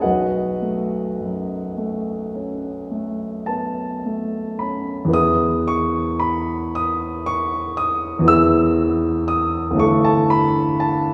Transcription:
0.02 5.12 B1 soft
0.02 4.57 F#4 soft
0.02 4.57 B4 soft
0.02 4.57 D#5 soft
0.02 4.61 F#5 medium
0.62 1.54 A3 soft
1.20 2.11 F#2 soft
1.77 2.68 A3 soft
2.35 3.26 C#4 soft
2.91 3.82 A3 soft
3.46 4.05 B3 soft
3.46 4.60 A5 medium
4.06 4.94 A3 soft
4.59 5.15 C#4 soft
4.59 5.14 B5 medium
5.05 8.18 E2 medium
5.05 8.20 E3 soft
5.09 8.22 B3 soft
5.09 8.24 E4 soft
5.13 8.25 G#4 soft
5.13 5.68 D#6 loud
5.68 6.22 C#6 medium
6.20 6.74 B5 medium
6.75 7.28 D#6 medium
7.26 7.79 C#6 medium
7.77 8.29 D#6 medium
8.19 9.71 E2 medium
8.19 9.71 E3 soft
8.23 9.73 B3 soft
8.23 9.74 E4 soft
8.28 9.76 G#4 soft
8.28 9.29 E6 loud
9.28 9.80 D#6 medium
9.71 11.14 G1 medium
9.71 11.14 E3 soft
9.75 11.14 A3 soft
9.75 11.14 D4 soft
9.79 11.14 A4 soft
9.79 10.06 C#6 medium
10.04 10.31 A5 medium
10.30 10.81 B5 medium
10.80 11.14 A5 medium

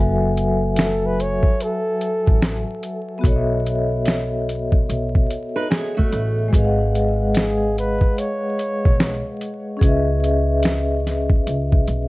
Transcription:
0.00 1.41 F#1 medium
0.00 3.17 F#3 medium
0.00 3.18 F#4 medium
0.00 3.21 A4 medium
0.00 0.19 B4 soft
0.00 3.22 E5 medium
0.00 0.19 F#5 medium
0.00 3.20 G#5 medium
0.37 closed hi-hat medium
0.76 finger snap medium
0.76 snare loud
0.76 closed hi-hat medium
0.80 1.07 A4 medium
1.06 1.23 B4 loud
1.20 1.64 C#5 loud
1.20 closed hi-hat medium
1.43 kick medium
1.60 2.84 A4 medium
1.60 closed hi-hat medium
2.01 closed hi-hat medium
2.27 2.62 A1 medium
2.27 kick medium
2.42 finger snap medium
2.42 snare loud
2.42 closed hi-hat medium
2.83 closed hi-hat medium
3.19 6.46 B3 medium
3.19 6.47 F#4 medium
3.24 4.84 B1 loud
3.24 6.49 A4 medium
3.24 6.50 C#5 medium
3.24 kick loud
3.24 closed hi-hat medium
3.29 3.35 D#5 medium
3.35 6.54 E5 medium
3.66 closed hi-hat medium
4.05 finger snap medium
4.05 snare loud
4.05 closed hi-hat medium
4.49 closed hi-hat medium
4.72 kick medium
4.89 5.24 B1 medium
4.89 closed hi-hat medium
5.15 kick medium
5.30 closed hi-hat medium
5.56 5.70 D#4 medium
5.56 5.70 B4 medium
5.70 5.96 B3 medium
5.70 5.95 G#4 medium
5.70 finger snap medium
5.70 snare loud
5.70 closed hi-hat medium
5.97 6.50 A3 medium
5.97 6.50 F#4 medium
5.97 kick medium
6.12 6.47 A1 medium
6.12 closed hi-hat medium
6.48 9.75 G#3 medium
6.48 9.76 G#4 medium
6.53 7.98 G#1 loud
6.53 9.78 B4 medium
6.53 9.79 D#5 medium
6.53 kick loud
6.53 closed hi-hat medium
6.58 6.64 F5 medium
6.65 9.84 F#5 medium
6.95 closed hi-hat medium
7.34 7.74 G#4 medium
7.34 finger snap medium
7.34 snare loud
7.34 closed hi-hat medium
7.78 8.20 B4 medium
7.78 closed hi-hat medium
8.01 kick medium
8.18 9.41 C#5 medium
8.18 closed hi-hat medium
8.59 closed hi-hat medium
8.85 9.20 B1 medium
8.85 kick loud
9.00 finger snap medium
9.00 snare loud
9.00 closed hi-hat medium
9.41 closed hi-hat medium
9.77 12.08 C#4 medium
9.77 12.08 G#4 medium
9.81 11.42 C#2 medium
9.81 12.08 B4 medium
9.81 12.08 D#5 medium
9.81 kick loud
9.81 closed hi-hat medium
9.87 12.08 E5 medium
10.24 closed hi-hat medium
10.63 finger snap medium
10.63 snare loud
10.63 closed hi-hat medium
11.07 snare soft
11.07 closed hi-hat medium
11.30 kick loud
11.47 11.81 C#2 medium
11.47 closed hi-hat medium
11.72 kick medium
11.88 12.08 B1 medium
11.88 closed hi-hat medium

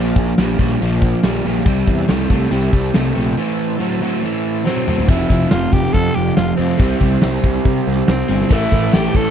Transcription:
0.00 0.11 A#1 medium
0.00 0.34 A#2 medium
0.00 0.35 F3 medium
0.00 1.66 A#3 medium
0.00 1.65 F4 medium
0.00 1.66 D5 medium
0.16 0.32 A#1 medium
0.16 kick medium
0.16 open hi-hat medium
0.38 0.54 A#1 medium
0.38 0.58 A#2 medium
0.38 0.58 G3 medium
0.38 snare loud
0.38 open hi-hat medium
0.59 0.75 A#1 medium
0.59 0.79 A#2 medium
0.59 0.79 G3 medium
0.59 kick medium
0.59 open hi-hat soft
0.81 1.13 A#1 medium
0.81 1.20 A#2 medium
0.81 1.20 F3 medium
0.81 open hi-hat medium
1.02 kick medium
1.02 open hi-hat medium
1.23 1.40 A#1 medium
1.23 1.42 A#2 medium
1.23 1.43 G3 medium
1.23 snare loud
1.23 open hi-hat medium
1.45 1.61 A#1 medium
1.45 1.64 A#2 medium
1.45 1.64 G3 medium
1.45 open hi-hat medium
1.56 snare soft
1.66 1.82 C2 medium
1.66 2.05 C3 medium
1.66 2.05 G3 loud
1.66 3.36 C4 medium
1.66 3.37 G4 medium
1.66 3.37 E5 medium
1.66 kick loud
1.66 open hi-hat medium
1.87 2.04 E2 medium
1.87 kick medium
1.87 open hi-hat medium
2.08 2.26 C2 medium
2.08 2.28 C3 medium
2.08 2.28 A3 medium
2.08 snare loud
2.08 open hi-hat medium
2.29 2.46 C2 medium
2.29 2.49 C3 medium
2.29 2.50 A3 medium
2.29 kick medium
2.29 open hi-hat medium
2.51 2.68 C2 medium
2.51 2.90 C3 medium
2.51 2.90 G3 medium
2.51 open hi-hat medium
2.73 2.89 C2 medium
2.73 kick medium
2.73 open hi-hat medium
2.93 3.11 C2 medium
2.93 3.13 C3 medium
2.93 3.14 A3 medium
2.93 snare loud
2.93 open hi-hat medium
3.14 3.33 A#1 medium
3.14 3.35 C3 medium
3.14 3.35 A3 medium
3.14 open hi-hat medium
3.37 3.76 A2 medium
3.37 3.76 E3 medium
3.37 5.08 C4 medium
3.37 5.08 A4 medium
3.37 5.08 E5 medium
3.78 3.99 A2 medium
3.78 3.99 F#3 loud
4.01 4.21 A2 medium
4.01 4.21 F#3 medium
4.22 4.61 A2 medium
4.22 4.62 E3 medium
4.64 4.85 A2 medium
4.64 4.85 F#3 medium
4.64 5.11 C4 medium
4.64 snare medium
4.77 high tom medium
4.87 5.07 A2 medium
4.87 5.07 F#3 medium
4.87 mid tom medium
4.98 floor tom medium
5.08 5.23 F1 medium
5.08 6.57 F2 loud
5.08 6.58 C3 loud
5.08 6.56 F3 loud
5.08 5.23 A#3 medium
5.08 5.28 E4 medium
5.08 5.23 F#4 medium
5.08 5.24 C#5 medium
5.08 kick loud
5.08 crash loud
5.24 6.79 A3 medium
5.24 6.80 F4 medium
5.24 6.79 C5 medium
5.29 5.44 F1 medium
5.29 5.52 E4 medium
5.29 kick medium
5.51 5.66 F1 medium
5.51 5.74 F4 medium
5.51 snare loud
5.51 open hi-hat medium
5.73 5.87 F1 medium
5.73 5.95 G4 loud
5.73 kick medium
5.93 6.09 F2 loud
5.93 6.16 A4 loud
5.93 kick medium
5.93 open hi-hat medium
6.15 6.30 F1 medium
6.15 6.35 G4 loud
6.27 snare soft
6.36 6.52 F1 loud
6.36 6.56 F4 loud
6.36 snare loud
6.36 open hi-hat medium
6.56 6.73 F2 medium
6.56 6.77 C3 medium
6.56 6.78 F3 medium
6.56 6.98 C4 medium
6.61 6.80 F2 medium
6.69 snare soft
6.78 6.94 C2 medium
6.78 8.28 C3 medium
6.78 8.29 G3 loud
6.78 8.50 G3 medium
6.78 8.50 E4 medium
6.78 8.51 C5 medium
6.78 kick loud
6.78 open hi-hat medium
6.83 8.27 C4 loud
7.01 7.15 C2 medium
7.01 kick medium
7.22 7.38 C2 medium
7.22 snare loud
7.22 open hi-hat medium
7.44 7.58 C2 medium
7.44 kick medium
7.65 7.79 C3 loud
7.65 kick medium
7.65 open hi-hat medium
7.87 8.01 C2 medium
8.08 8.22 C2 loud
8.08 8.54 C4 medium
8.08 snare loud
8.08 open hi-hat medium
8.28 8.43 G1 medium
8.28 8.49 C3 medium
8.28 8.50 G3 medium
8.28 8.49 C4 medium
8.41 snare soft
8.49 8.65 A1 medium
8.49 9.30 A2 medium
8.49 9.30 E3 medium
8.49 9.30 A3 medium
8.49 9.30 A3 loud
8.49 8.95 E4 loud
8.49 9.30 E4 medium
8.49 9.30 C5 medium
8.49 kick loud
8.49 open hi-hat medium
8.49 cowbell loud
8.72 8.86 A1 medium
8.72 kick medium
8.72 cowbell medium
8.93 9.08 A1 medium
8.93 9.17 G4 medium
8.93 snare loud
8.93 open hi-hat medium
8.93 cowbell medium
9.15 9.29 A1 medium
9.15 9.30 A4 loud
9.15 kick medium

